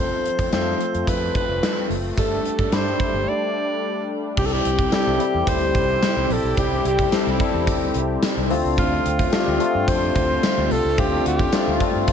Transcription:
Already playing: F1 F3 A3 C4 F4 A4
0.00 C5
0.25 closed hi-hat
0.39 F2, kick, closed hi-hat
0.52 F2 A3 C4 F4 A4 C5, snare, closed hi-hat
0.81 closed hi-hat
0.94 F2, closed hi-hat
1.07 F2 B4, kick, closed hi-hat
1.35 B4, kick, closed hi-hat
1.49 F1
1.63 snare, closed hi-hat
1.90 F#1, open hi-hat
2.17 G1 G3 A3 D4 G4 A4, kick, closed hi-hat
2.45 closed hi-hat
2.59 G2, kick
2.72 G2 A3 D4 G4 C5 B5, snare, closed hi-hat
3.00 kick, closed hi-hat
3.14 G1
3.29 D5
4.37 C2 C3 G3 C4 E4 G4, kick, crash
4.46 A4
4.53 G4
4.65 C2, closed hi-hat
4.78 kick, closed hi-hat
4.92 G3 C4 E4 G4 A4, snare, closed hi-hat, tambourine
5.07 C2
5.19 G3 C4 E4 G4, closed hi-hat
5.34 E2
5.47 D2 C5, kick, closed hi-hat
5.75 C2, kick, closed hi-hat
6.02 snare, closed hi-hat, tambourine
6.16 C2
6.30 A#1 A4, open hi-hat
6.43 B1
6.57 C2 G3 C4 E4 G4, kick, closed hi-hat
6.85 C2 G4, closed hi-hat
6.99 kick, closed hi-hat
7.12 G3 C4 E4 A4, snare, closed hi-hat, tambourine
7.27 C2
7.40 G3 C4 E4 A4, kick, closed hi-hat
7.54 E2
7.67 D2, kick, closed hi-hat
7.94 C2, closed hi-hat
8.22 snare, closed hi-hat, tambourine
8.37 C2
8.50 D2 D3 A3 C4 D4 F4, open hi-hat
8.65 C#2
8.78 D2 F4, kick, closed hi-hat
9.06 D2, closed hi-hat
9.19 kick, closed hi-hat
9.32 A3 C4 D4 F4 G4, snare, closed hi-hat, tambourine
9.47 D2
9.59 A3 C4 D4 F4, closed hi-hat
9.75 G2
9.88 F2 C5, kick, closed hi-hat
10.15 D2, kick, closed hi-hat
10.43 snare, closed hi-hat, tambourine
10.58 D2
10.71 C2 A4, open hi-hat
10.85 C#2
10.97 D2 A3 C4 D4 F4 G4, kick, closed hi-hat
11.26 D2 G4, closed hi-hat
11.39 kick
11.52 A3 C4 D4 F4, snare, closed hi-hat, tambourine
11.67 D2
11.80 A3 C4 D4 F4, kick, closed hi-hat
11.95 G2
12.08 F2, kick, closed hi-hat

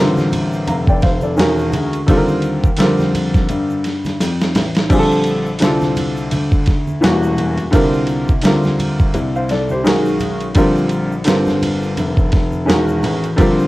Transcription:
Already playing: A1 G3 C4 F4
0.00 D3 A#4
0.17 snare, high conga, shaker
0.32 ride, low conga, shaker
0.53 shaker
0.67 F1 F5 A#5, ride, low conga, shaker
0.87 D5 G5, kick, shaker
1.01 C5 F5, kick, snare, ride, shaker
1.21 A4 D5, high conga, shaker
1.36 E1 D#3 G#3 C#4 F#4 A#4, snare, hi-hat pedal, ride, shaker
1.58 shaker
1.72 D2, ride, low conga, shaker
1.93 ride, shaker
2.06 D#2 D3 G3 C4 F4, kick, ride, shaker
2.11 A4
2.17 A#4
2.28 high conga, shaker
2.42 ride, shaker
2.64 kick, shaker
2.77 F2 D3 G3 C4 F4, snare, hi-hat pedal, ride, shaker
2.82 A#4
2.99 snare, high conga, shaker
3.15 ride, high conga, low conga, shaker
3.34 kick, snare, ride, shaker
3.49 G2, ride, low conga, shaker
3.70 high conga, shaker
3.84 snare, ride, shaker
4.05 snare, ride, high conga, shaker
4.20 F2, snare, hi-hat pedal, ride, shaker
4.41 snare, shaker
4.55 A1, snare, ride, low conga, shaker
4.75 snare, ride, shaker
4.89 A#1 D3 G3 C4 F4 G#4, kick, crash, shaker
4.99 A4
5.12 shaker
5.24 ride, shaker
5.46 shaker
5.59 C2 D3 G3 C4, snare, hi-hat pedal, ride, shaker
5.63 F4 A4
5.82 snare, high conga, shaker
5.96 ride, low conga, shaker
6.17 shaker
6.31 D2, ride, low conga, shaker
6.52 kick, shaker
6.66 kick, snare, ride, shaker
6.87 high conga, shaker
7.01 E1 E3 G3 A#3 C#4 F#4, snare, hi-hat pedal, ride, shaker
7.23 shaker
7.37 ride, low conga, shaker
7.58 E1, ride, shaker
7.71 C2 D3 G3 C4 F4 A#4, kick, ride, shaker
7.93 shaker
8.07 ride, shaker
8.28 kick, shaker
8.41 D2 D3 G3 C4 F4, snare, hi-hat pedal, ride, shaker
8.46 A#4
8.64 snare, high conga, shaker
8.79 ride, low conga, shaker
8.99 kick, shaker
9.14 C2, ride, low conga, shaker
9.36 C5 F5, shaker
9.49 A4 D5, snare, ride, shaker
9.69 G4 C5, high conga, shaker
9.84 B1 D#3 G#3 C#4 F#4 A#4, snare, hi-hat pedal, ride, shaker
10.06 shaker
10.20 ride, low conga, shaker
10.40 ride, shaker
10.54 A#1 D3 G3 C4 F4 A#4, kick, ride, shaker
10.77 shaker
10.89 ride, shaker
11.12 shaker
11.24 G1 D3 G3 C4 F4, snare, hi-hat pedal, ride, shaker
11.28 A#4
11.47 snare, high conga, shaker
11.62 ride, low conga, shaker
11.82 shaker
11.97 F1, ride, low conga, shaker
12.17 kick, shaker
12.32 kick, snare, ride, shaker
12.52 high conga, shaker
12.65 E1 D#3 G#3 C#4 F#4 A#4, shaker
12.70 snare, hi-hat pedal, ride
12.88 shaker
13.03 A1, ride, low conga, shaker
13.24 ride, shaker
13.36 A#1 D3 G3 C4 F4, kick, ride, shaker
13.40 A#4
13.60 shaker

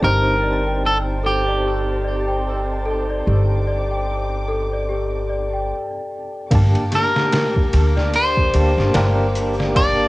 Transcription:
Already playing: G5 A5
0.01 G1 C4 D#4 G4 A#4 C5
0.06 C5
0.44 D5
0.67 G5
0.86 A4
1.24 G4 A4
1.48 D5
1.64 G4
2.04 D5
2.28 G5
2.85 A4
3.10 D5
3.26 G1 G4 D6
3.67 D5
3.91 G5
4.48 A4
4.73 D5
4.89 G4
5.30 D5
5.53 G5
6.51 G1 A#3 D4 G4 G5 A5 D6, kick, ride
6.55 A5
6.75 ride
6.91 G4, snare, ride
6.95 A#4
7.15 G4, snare
7.32 A#4, snare, ride
7.56 kick
7.72 D2 G4, ride
7.96 D5, snare
8.14 C5, ride
8.37 kick
8.54 D2 A#3 D4 G4 A5, ride
8.77 G1 G4, snare
8.94 G1 A#3 D4 G4 A#4, snare, ride
9.35 G4, open hi-hat
9.59 D5, snare
9.75 A#3 D4 G4 D5, kick, ride
9.79 A5

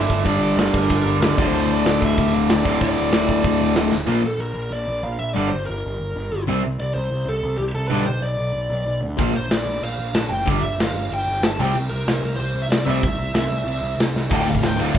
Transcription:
Already playing: G2 D3 G3 E5
0.10 G1, kick
0.25 G1 G2 D3 G3 D5, kick, crash
0.40 G1
0.56 G1, snare, crash
0.62 D5
0.74 G1 A#4, kick
0.90 G1, kick, crash
0.96 A#4
1.04 G1
1.20 C#2, snare, crash
1.26 D5
1.38 D1 D2 A2 D3, kick
1.44 C5
1.53 D1, crash
1.60 C5
1.69 D1
1.73 D5
1.84 D1, snare, crash
2.02 D1 E5, kick
2.17 D1, kick, crash
2.33 D1 F5
2.50 D1 D5, snare, crash
2.63 D1 D2 A2 D3, kick
2.80 D1 D5, kick, crash
2.97 D1
3.12 D1, snare, crash
3.29 D1, kick
3.44 D1, kick, crash
3.61 D1
3.76 D1, snare, crash
3.92 D1, snare
4.07 A#1 A#2 F3 A#3
4.24 A#1 A4
4.39 A#1 A#4
4.54 A#1
4.71 A#1 D5
4.88 A#1
5.03 A#1 F5
5.19 A#1 E5
5.33 G1 G2 D3 G3 D5
5.49 C5
5.53 G1
5.65 G1 A#4
5.85 G1
6.00 G1
6.16 G1
6.32 G1
6.47 C2 C3 G3 C4
6.63 C2
6.79 C2 D5
6.94 C2 C5
7.11 C2
7.26 C2 A4
7.43 C2
7.58 C2 G4
7.75 C2 A4
7.88 B1 G2 D3 B4
7.92 G3
8.06 B1 C5
8.21 B1 D5
8.38 B1
8.54 B1
8.69 B1
8.86 B1
9.01 D2
9.17 A#1 A#2 F3 A#3, kick, crash
9.32 A#1 C5
9.49 A#1 D5, snare, crash
9.66 A#1
9.81 A#1 F5, crash
9.99 A#1
10.14 A#1 A5, snare, crash
10.30 F#1 G5
10.45 G1 G2 D3 G3, kick, crash
10.62 G1 E5
10.79 G1 F5, snare, crash
10.94 G1
11.11 G1 G5, crash
11.26 G1
11.42 G1 A5, snare, crash
11.59 C2 C3 G3 C4 G5
11.75 C2, crash
11.90 C2 A#4
12.07 C2, snare, crash
12.23 C2
12.36 C2 C5, crash
12.54 C2
12.62 E5
12.69 C2 D5, snare, crash
12.85 C2 C3 G3 C4 E5
13.03 C2, kick, crash
13.18 C2
13.34 C2, snare, crash
13.50 C2
13.65 C2, crash
13.81 C2
13.97 C2, snare, crash
14.13 C2, snare
14.30 D1 D2 A2 D3 G5, kick, crash
14.46 D2 A2 F5, crash
14.55 kick
14.61 D1 D2 A2 G5, snare, crash
14.76 D2 A2 D3, crash
14.81 F5
14.92 D1 D2 A2, kick, crash

